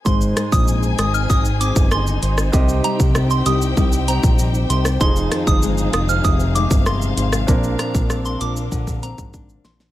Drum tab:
HH |--x---x---x---x-|--x---x---x---x-|--x---x---x---x-|--x---x---x---x-|
SH |xxxxxxxxxxxxxxxx|xxxxxxxxxxxxxxxx|xxxxxxxxxxxxxxxx|xxxxxxxxxxxxxxxx|
SD |--r---r-----r--r|----r----------r|--r---r-----r--r|--r-r---------oo|
BD |o--o----o--o----|o--o----o--o----|o--o----o--o----|o--o----oo-oo---|